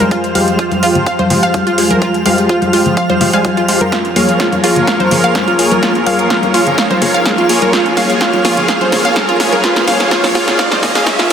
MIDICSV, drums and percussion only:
0, 0, Header, 1, 2, 480
1, 0, Start_track
1, 0, Tempo, 476190
1, 115, Time_signature, 4, 2, 24, 8
1, 11420, End_track
2, 0, Start_track
2, 0, Title_t, "Drums"
2, 1, Note_on_c, 9, 63, 87
2, 2, Note_on_c, 9, 42, 51
2, 102, Note_off_c, 9, 42, 0
2, 102, Note_off_c, 9, 63, 0
2, 114, Note_on_c, 9, 36, 114
2, 115, Note_on_c, 9, 42, 48
2, 215, Note_off_c, 9, 36, 0
2, 216, Note_off_c, 9, 42, 0
2, 242, Note_on_c, 9, 42, 25
2, 342, Note_off_c, 9, 42, 0
2, 354, Note_on_c, 9, 63, 95
2, 355, Note_on_c, 9, 46, 110
2, 455, Note_off_c, 9, 63, 0
2, 456, Note_off_c, 9, 46, 0
2, 481, Note_on_c, 9, 42, 53
2, 582, Note_off_c, 9, 42, 0
2, 594, Note_on_c, 9, 36, 121
2, 595, Note_on_c, 9, 42, 49
2, 694, Note_off_c, 9, 36, 0
2, 696, Note_off_c, 9, 42, 0
2, 721, Note_on_c, 9, 42, 24
2, 721, Note_on_c, 9, 63, 67
2, 822, Note_off_c, 9, 42, 0
2, 822, Note_off_c, 9, 63, 0
2, 834, Note_on_c, 9, 46, 106
2, 935, Note_off_c, 9, 46, 0
2, 961, Note_on_c, 9, 42, 51
2, 961, Note_on_c, 9, 64, 84
2, 1062, Note_off_c, 9, 42, 0
2, 1062, Note_off_c, 9, 64, 0
2, 1074, Note_on_c, 9, 36, 120
2, 1074, Note_on_c, 9, 42, 49
2, 1174, Note_off_c, 9, 36, 0
2, 1175, Note_off_c, 9, 42, 0
2, 1201, Note_on_c, 9, 42, 25
2, 1201, Note_on_c, 9, 63, 90
2, 1302, Note_off_c, 9, 42, 0
2, 1302, Note_off_c, 9, 63, 0
2, 1314, Note_on_c, 9, 46, 109
2, 1314, Note_on_c, 9, 64, 96
2, 1415, Note_off_c, 9, 46, 0
2, 1415, Note_off_c, 9, 64, 0
2, 1441, Note_on_c, 9, 42, 49
2, 1542, Note_off_c, 9, 42, 0
2, 1554, Note_on_c, 9, 36, 127
2, 1554, Note_on_c, 9, 42, 51
2, 1554, Note_on_c, 9, 63, 69
2, 1654, Note_off_c, 9, 36, 0
2, 1655, Note_off_c, 9, 42, 0
2, 1655, Note_off_c, 9, 63, 0
2, 1681, Note_on_c, 9, 42, 25
2, 1782, Note_off_c, 9, 42, 0
2, 1794, Note_on_c, 9, 46, 113
2, 1895, Note_off_c, 9, 46, 0
2, 1921, Note_on_c, 9, 42, 52
2, 1921, Note_on_c, 9, 63, 90
2, 2022, Note_off_c, 9, 42, 0
2, 2022, Note_off_c, 9, 63, 0
2, 2034, Note_on_c, 9, 36, 114
2, 2034, Note_on_c, 9, 42, 48
2, 2134, Note_off_c, 9, 36, 0
2, 2135, Note_off_c, 9, 42, 0
2, 2161, Note_on_c, 9, 42, 24
2, 2262, Note_off_c, 9, 42, 0
2, 2274, Note_on_c, 9, 46, 102
2, 2274, Note_on_c, 9, 63, 89
2, 2375, Note_off_c, 9, 46, 0
2, 2375, Note_off_c, 9, 63, 0
2, 2401, Note_on_c, 9, 42, 50
2, 2501, Note_off_c, 9, 42, 0
2, 2514, Note_on_c, 9, 36, 122
2, 2514, Note_on_c, 9, 42, 49
2, 2614, Note_off_c, 9, 36, 0
2, 2615, Note_off_c, 9, 42, 0
2, 2641, Note_on_c, 9, 42, 25
2, 2641, Note_on_c, 9, 63, 65
2, 2741, Note_off_c, 9, 63, 0
2, 2742, Note_off_c, 9, 42, 0
2, 2754, Note_on_c, 9, 46, 101
2, 2855, Note_off_c, 9, 46, 0
2, 2880, Note_on_c, 9, 64, 85
2, 2881, Note_on_c, 9, 42, 48
2, 2981, Note_off_c, 9, 42, 0
2, 2981, Note_off_c, 9, 64, 0
2, 2994, Note_on_c, 9, 36, 125
2, 2994, Note_on_c, 9, 42, 49
2, 3095, Note_off_c, 9, 36, 0
2, 3095, Note_off_c, 9, 42, 0
2, 3121, Note_on_c, 9, 42, 25
2, 3121, Note_on_c, 9, 63, 91
2, 3222, Note_off_c, 9, 42, 0
2, 3222, Note_off_c, 9, 63, 0
2, 3234, Note_on_c, 9, 46, 105
2, 3234, Note_on_c, 9, 64, 90
2, 3335, Note_off_c, 9, 46, 0
2, 3335, Note_off_c, 9, 64, 0
2, 3360, Note_on_c, 9, 42, 50
2, 3461, Note_off_c, 9, 42, 0
2, 3474, Note_on_c, 9, 36, 127
2, 3474, Note_on_c, 9, 42, 50
2, 3474, Note_on_c, 9, 63, 62
2, 3575, Note_off_c, 9, 36, 0
2, 3575, Note_off_c, 9, 42, 0
2, 3575, Note_off_c, 9, 63, 0
2, 3601, Note_on_c, 9, 42, 24
2, 3702, Note_off_c, 9, 42, 0
2, 3714, Note_on_c, 9, 46, 115
2, 3815, Note_off_c, 9, 46, 0
2, 3841, Note_on_c, 9, 42, 50
2, 3841, Note_on_c, 9, 63, 89
2, 3942, Note_off_c, 9, 42, 0
2, 3942, Note_off_c, 9, 63, 0
2, 3954, Note_on_c, 9, 36, 109
2, 3954, Note_on_c, 9, 38, 48
2, 3954, Note_on_c, 9, 42, 51
2, 4054, Note_off_c, 9, 36, 0
2, 4055, Note_off_c, 9, 38, 0
2, 4055, Note_off_c, 9, 42, 0
2, 4081, Note_on_c, 9, 42, 24
2, 4182, Note_off_c, 9, 42, 0
2, 4194, Note_on_c, 9, 46, 104
2, 4194, Note_on_c, 9, 63, 89
2, 4295, Note_off_c, 9, 46, 0
2, 4295, Note_off_c, 9, 63, 0
2, 4321, Note_on_c, 9, 42, 52
2, 4421, Note_off_c, 9, 42, 0
2, 4434, Note_on_c, 9, 36, 123
2, 4434, Note_on_c, 9, 38, 50
2, 4434, Note_on_c, 9, 42, 52
2, 4534, Note_off_c, 9, 36, 0
2, 4535, Note_off_c, 9, 38, 0
2, 4535, Note_off_c, 9, 42, 0
2, 4561, Note_on_c, 9, 42, 25
2, 4561, Note_on_c, 9, 63, 61
2, 4662, Note_off_c, 9, 42, 0
2, 4662, Note_off_c, 9, 63, 0
2, 4674, Note_on_c, 9, 46, 105
2, 4774, Note_off_c, 9, 46, 0
2, 4801, Note_on_c, 9, 42, 51
2, 4801, Note_on_c, 9, 64, 80
2, 4902, Note_off_c, 9, 42, 0
2, 4902, Note_off_c, 9, 64, 0
2, 4914, Note_on_c, 9, 36, 119
2, 4914, Note_on_c, 9, 38, 52
2, 4914, Note_on_c, 9, 42, 51
2, 5014, Note_off_c, 9, 36, 0
2, 5014, Note_off_c, 9, 38, 0
2, 5014, Note_off_c, 9, 42, 0
2, 5041, Note_on_c, 9, 42, 25
2, 5041, Note_on_c, 9, 63, 89
2, 5141, Note_off_c, 9, 42, 0
2, 5142, Note_off_c, 9, 63, 0
2, 5154, Note_on_c, 9, 46, 109
2, 5155, Note_on_c, 9, 64, 97
2, 5255, Note_off_c, 9, 46, 0
2, 5255, Note_off_c, 9, 64, 0
2, 5280, Note_on_c, 9, 42, 47
2, 5381, Note_off_c, 9, 42, 0
2, 5394, Note_on_c, 9, 36, 124
2, 5394, Note_on_c, 9, 38, 55
2, 5394, Note_on_c, 9, 42, 49
2, 5395, Note_on_c, 9, 63, 64
2, 5494, Note_off_c, 9, 36, 0
2, 5495, Note_off_c, 9, 38, 0
2, 5495, Note_off_c, 9, 42, 0
2, 5495, Note_off_c, 9, 63, 0
2, 5520, Note_on_c, 9, 42, 23
2, 5621, Note_off_c, 9, 42, 0
2, 5634, Note_on_c, 9, 46, 115
2, 5735, Note_off_c, 9, 46, 0
2, 5761, Note_on_c, 9, 42, 49
2, 5761, Note_on_c, 9, 63, 85
2, 5862, Note_off_c, 9, 42, 0
2, 5862, Note_off_c, 9, 63, 0
2, 5873, Note_on_c, 9, 36, 110
2, 5874, Note_on_c, 9, 38, 59
2, 5874, Note_on_c, 9, 42, 50
2, 5974, Note_off_c, 9, 36, 0
2, 5975, Note_off_c, 9, 38, 0
2, 5975, Note_off_c, 9, 42, 0
2, 6001, Note_on_c, 9, 42, 26
2, 6101, Note_off_c, 9, 42, 0
2, 6114, Note_on_c, 9, 46, 98
2, 6114, Note_on_c, 9, 63, 87
2, 6214, Note_off_c, 9, 46, 0
2, 6215, Note_off_c, 9, 63, 0
2, 6240, Note_on_c, 9, 42, 52
2, 6341, Note_off_c, 9, 42, 0
2, 6354, Note_on_c, 9, 36, 119
2, 6354, Note_on_c, 9, 38, 63
2, 6354, Note_on_c, 9, 42, 54
2, 6454, Note_off_c, 9, 36, 0
2, 6455, Note_off_c, 9, 38, 0
2, 6455, Note_off_c, 9, 42, 0
2, 6481, Note_on_c, 9, 42, 25
2, 6481, Note_on_c, 9, 63, 62
2, 6582, Note_off_c, 9, 42, 0
2, 6582, Note_off_c, 9, 63, 0
2, 6594, Note_on_c, 9, 46, 94
2, 6695, Note_off_c, 9, 46, 0
2, 6720, Note_on_c, 9, 42, 50
2, 6721, Note_on_c, 9, 64, 76
2, 6821, Note_off_c, 9, 42, 0
2, 6822, Note_off_c, 9, 64, 0
2, 6834, Note_on_c, 9, 36, 115
2, 6834, Note_on_c, 9, 38, 65
2, 6834, Note_on_c, 9, 42, 53
2, 6934, Note_off_c, 9, 36, 0
2, 6935, Note_off_c, 9, 38, 0
2, 6935, Note_off_c, 9, 42, 0
2, 6961, Note_on_c, 9, 42, 26
2, 6961, Note_on_c, 9, 63, 89
2, 7061, Note_off_c, 9, 42, 0
2, 7062, Note_off_c, 9, 63, 0
2, 7074, Note_on_c, 9, 46, 100
2, 7074, Note_on_c, 9, 64, 87
2, 7174, Note_off_c, 9, 46, 0
2, 7175, Note_off_c, 9, 64, 0
2, 7201, Note_on_c, 9, 42, 48
2, 7302, Note_off_c, 9, 42, 0
2, 7314, Note_on_c, 9, 36, 121
2, 7314, Note_on_c, 9, 38, 74
2, 7314, Note_on_c, 9, 42, 53
2, 7314, Note_on_c, 9, 63, 60
2, 7414, Note_off_c, 9, 36, 0
2, 7415, Note_off_c, 9, 38, 0
2, 7415, Note_off_c, 9, 42, 0
2, 7415, Note_off_c, 9, 63, 0
2, 7441, Note_on_c, 9, 42, 25
2, 7542, Note_off_c, 9, 42, 0
2, 7554, Note_on_c, 9, 46, 107
2, 7654, Note_off_c, 9, 46, 0
2, 7681, Note_on_c, 9, 42, 53
2, 7681, Note_on_c, 9, 63, 87
2, 7782, Note_off_c, 9, 42, 0
2, 7782, Note_off_c, 9, 63, 0
2, 7794, Note_on_c, 9, 36, 108
2, 7794, Note_on_c, 9, 38, 71
2, 7794, Note_on_c, 9, 42, 52
2, 7894, Note_off_c, 9, 36, 0
2, 7895, Note_off_c, 9, 38, 0
2, 7895, Note_off_c, 9, 42, 0
2, 7921, Note_on_c, 9, 42, 27
2, 8022, Note_off_c, 9, 42, 0
2, 8034, Note_on_c, 9, 38, 74
2, 8034, Note_on_c, 9, 46, 101
2, 8034, Note_on_c, 9, 63, 90
2, 8135, Note_off_c, 9, 38, 0
2, 8135, Note_off_c, 9, 46, 0
2, 8135, Note_off_c, 9, 63, 0
2, 8161, Note_on_c, 9, 42, 55
2, 8262, Note_off_c, 9, 42, 0
2, 8274, Note_on_c, 9, 36, 118
2, 8274, Note_on_c, 9, 38, 81
2, 8274, Note_on_c, 9, 42, 53
2, 8374, Note_off_c, 9, 36, 0
2, 8375, Note_off_c, 9, 38, 0
2, 8375, Note_off_c, 9, 42, 0
2, 8401, Note_on_c, 9, 42, 27
2, 8401, Note_on_c, 9, 63, 67
2, 8502, Note_off_c, 9, 42, 0
2, 8502, Note_off_c, 9, 63, 0
2, 8514, Note_on_c, 9, 38, 77
2, 8514, Note_on_c, 9, 46, 94
2, 8615, Note_off_c, 9, 38, 0
2, 8615, Note_off_c, 9, 46, 0
2, 8641, Note_on_c, 9, 42, 55
2, 8641, Note_on_c, 9, 64, 79
2, 8742, Note_off_c, 9, 42, 0
2, 8742, Note_off_c, 9, 64, 0
2, 8754, Note_on_c, 9, 36, 120
2, 8755, Note_on_c, 9, 38, 82
2, 8755, Note_on_c, 9, 42, 54
2, 8854, Note_off_c, 9, 36, 0
2, 8855, Note_off_c, 9, 38, 0
2, 8855, Note_off_c, 9, 42, 0
2, 8881, Note_on_c, 9, 42, 27
2, 8881, Note_on_c, 9, 63, 88
2, 8981, Note_off_c, 9, 63, 0
2, 8982, Note_off_c, 9, 42, 0
2, 8994, Note_on_c, 9, 64, 90
2, 8995, Note_on_c, 9, 38, 85
2, 8995, Note_on_c, 9, 46, 106
2, 9095, Note_off_c, 9, 38, 0
2, 9095, Note_off_c, 9, 46, 0
2, 9095, Note_off_c, 9, 64, 0
2, 9122, Note_on_c, 9, 42, 52
2, 9222, Note_off_c, 9, 42, 0
2, 9234, Note_on_c, 9, 36, 118
2, 9234, Note_on_c, 9, 63, 67
2, 9235, Note_on_c, 9, 38, 88
2, 9235, Note_on_c, 9, 42, 55
2, 9334, Note_off_c, 9, 36, 0
2, 9335, Note_off_c, 9, 63, 0
2, 9336, Note_off_c, 9, 38, 0
2, 9336, Note_off_c, 9, 42, 0
2, 9361, Note_on_c, 9, 42, 27
2, 9462, Note_off_c, 9, 42, 0
2, 9475, Note_on_c, 9, 38, 97
2, 9475, Note_on_c, 9, 46, 110
2, 9575, Note_off_c, 9, 38, 0
2, 9575, Note_off_c, 9, 46, 0
2, 9601, Note_on_c, 9, 42, 52
2, 9601, Note_on_c, 9, 63, 84
2, 9702, Note_off_c, 9, 42, 0
2, 9702, Note_off_c, 9, 63, 0
2, 9714, Note_on_c, 9, 36, 112
2, 9714, Note_on_c, 9, 38, 89
2, 9714, Note_on_c, 9, 42, 56
2, 9815, Note_off_c, 9, 36, 0
2, 9815, Note_off_c, 9, 38, 0
2, 9815, Note_off_c, 9, 42, 0
2, 9841, Note_on_c, 9, 38, 78
2, 9841, Note_on_c, 9, 42, 29
2, 9942, Note_off_c, 9, 38, 0
2, 9942, Note_off_c, 9, 42, 0
2, 9954, Note_on_c, 9, 38, 95
2, 9954, Note_on_c, 9, 46, 108
2, 9954, Note_on_c, 9, 63, 92
2, 10055, Note_off_c, 9, 38, 0
2, 10055, Note_off_c, 9, 46, 0
2, 10055, Note_off_c, 9, 63, 0
2, 10081, Note_on_c, 9, 38, 84
2, 10081, Note_on_c, 9, 42, 57
2, 10182, Note_off_c, 9, 38, 0
2, 10182, Note_off_c, 9, 42, 0
2, 10194, Note_on_c, 9, 36, 119
2, 10194, Note_on_c, 9, 38, 92
2, 10194, Note_on_c, 9, 42, 58
2, 10295, Note_off_c, 9, 36, 0
2, 10295, Note_off_c, 9, 38, 0
2, 10295, Note_off_c, 9, 42, 0
2, 10321, Note_on_c, 9, 38, 85
2, 10321, Note_on_c, 9, 46, 59
2, 10321, Note_on_c, 9, 63, 66
2, 10422, Note_off_c, 9, 38, 0
2, 10422, Note_off_c, 9, 46, 0
2, 10422, Note_off_c, 9, 63, 0
2, 10434, Note_on_c, 9, 38, 97
2, 10434, Note_on_c, 9, 46, 97
2, 10535, Note_off_c, 9, 38, 0
2, 10535, Note_off_c, 9, 46, 0
2, 10561, Note_on_c, 9, 38, 92
2, 10561, Note_on_c, 9, 42, 57
2, 10561, Note_on_c, 9, 64, 79
2, 10661, Note_off_c, 9, 64, 0
2, 10662, Note_off_c, 9, 38, 0
2, 10662, Note_off_c, 9, 42, 0
2, 10674, Note_on_c, 9, 36, 116
2, 10674, Note_on_c, 9, 38, 99
2, 10674, Note_on_c, 9, 42, 54
2, 10775, Note_off_c, 9, 36, 0
2, 10775, Note_off_c, 9, 38, 0
2, 10775, Note_off_c, 9, 42, 0
2, 10801, Note_on_c, 9, 38, 89
2, 10801, Note_on_c, 9, 42, 28
2, 10801, Note_on_c, 9, 63, 93
2, 10902, Note_off_c, 9, 38, 0
2, 10902, Note_off_c, 9, 42, 0
2, 10902, Note_off_c, 9, 63, 0
2, 10914, Note_on_c, 9, 36, 61
2, 10914, Note_on_c, 9, 64, 97
2, 10915, Note_on_c, 9, 38, 98
2, 10915, Note_on_c, 9, 46, 102
2, 11015, Note_off_c, 9, 36, 0
2, 11015, Note_off_c, 9, 38, 0
2, 11015, Note_off_c, 9, 46, 0
2, 11015, Note_off_c, 9, 64, 0
2, 11041, Note_on_c, 9, 38, 92
2, 11041, Note_on_c, 9, 42, 53
2, 11142, Note_off_c, 9, 38, 0
2, 11142, Note_off_c, 9, 42, 0
2, 11154, Note_on_c, 9, 36, 114
2, 11154, Note_on_c, 9, 38, 108
2, 11154, Note_on_c, 9, 42, 58
2, 11154, Note_on_c, 9, 63, 68
2, 11255, Note_off_c, 9, 36, 0
2, 11255, Note_off_c, 9, 38, 0
2, 11255, Note_off_c, 9, 42, 0
2, 11255, Note_off_c, 9, 63, 0
2, 11281, Note_on_c, 9, 38, 94
2, 11281, Note_on_c, 9, 42, 29
2, 11382, Note_off_c, 9, 38, 0
2, 11382, Note_off_c, 9, 42, 0
2, 11420, End_track
0, 0, End_of_file